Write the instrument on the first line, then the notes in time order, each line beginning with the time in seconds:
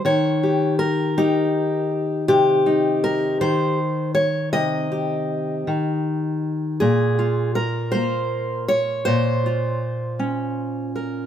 steel-string acoustic guitar
0.05 D#3 C#5
0.43 G4
0.79 A#4
1.18 D#4 G4
2.28 C3 G4
2.66 D#4
3.04 A#4
3.41 D#3 C5
4.15 C#5
4.53 C3 D#5
4.92 G4
5.67 D#3
6.80 A#2 G#4
7.19 F4
7.55 A#4
7.92 A#3 C5
8.68 C#5
9.05 A#2 C5
9.46 F4
10.19 C#4
10.96 A#4